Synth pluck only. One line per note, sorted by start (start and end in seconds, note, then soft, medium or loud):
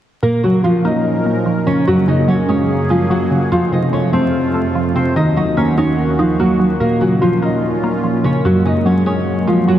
0.23 1.26 A#2 medium
0.44 1.46 C#3 medium
0.64 1.45 F3 medium
0.85 1.25 A#3 medium
1.26 1.87 A#3 medium
1.46 1.87 F3 medium
1.67 1.87 C#3 medium
1.88 2.90 F#2 loud
2.08 3.11 C#3 medium
2.28 3.09 F#3 medium
2.49 2.89 G#3 medium
2.90 3.52 G#3 medium
3.10 3.51 F#3 medium
3.31 3.52 C#3 medium
3.52 4.54 F2 loud
3.72 4.75 C3 medium
3.93 4.74 F3 medium
4.13 4.53 A3 medium
4.54 5.16 A3 medium
4.75 5.16 F3 medium
4.95 5.16 C3 medium
5.16 6.19 D#3 loud
5.37 6.40 F#3 medium
5.57 6.39 A#3 medium
5.78 6.18 D#4 medium
6.19 6.81 D#4 medium
6.40 6.81 A#3 medium
6.59 6.80 F#3 medium
6.80 7.83 A#2 loud
7.01 8.04 C#3 medium
7.22 8.02 F3 medium
7.42 7.83 A#3 medium
7.84 8.45 A#3 medium
8.04 8.45 F3 medium
8.24 8.45 C#3 medium
8.45 9.48 F#2 loud
8.65 9.68 C#3 medium
8.85 9.66 F#3 medium
9.06 9.46 G#3 medium
9.48 9.79 G#3 medium
9.68 9.79 F#3 medium